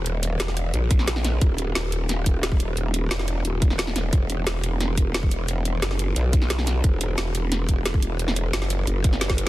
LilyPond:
<<
  \new Staff \with { instrumentName = "Wobble bass" } { \clef bass \time 4/4 \key fes \lydian \tempo 4 = 177 ees,,4 fes,,4 bes,,2 | ees,,4 ees,,4. ees,,4 ees,,8~ | ees,,4 fes,,4 ees,,4. ees,,8 | e,,4 e,,4. e,,4 e,,8~ |
e,,4 ges,,4 b,,2 | e,,4 e,,4. e,,4 e,,8~ | e,,4 ges,,4 ges,,2 | }
  \new DrumStaff \with { instrumentName = "Drums" } \drummode { \time 4/4 hh8 hh8 <hh sn>16 sn16 hh8 hh8 <hh bd>16 sn16 <hh sn>16 sn16 <hh sn>8 | <hh bd>8 hh8 <hh sn>8 hh8 <hh sn>8 <hh bd>8 <hh sn>16 bd16 hh8 | hh8 hh8 <hh sn>16 sn16 hh8 hh8 <hh bd>16 sn16 <hh sn>16 sn16 <hh sn>8 | <hh bd>8 hh8 <hh sn>8 hh8 <hh sn>8 <hh bd>8 <hh sn>16 bd16 hh8 |
hh8 hh8 <hh sn>16 sn16 hh8 hh8 <hh bd>16 sn16 <hh sn>16 sn16 <hh sn>8 | <hh bd>8 hh8 <hh sn>8 hh8 <hh sn>8 <hh bd>8 <hh sn>16 bd16 hh8 | hh16 sn16 hh8 <hh sn>16 sn16 hh8 hh8 <hh bd>16 sn16 <hh sn>16 <bd sn>16 hh8 | }
>>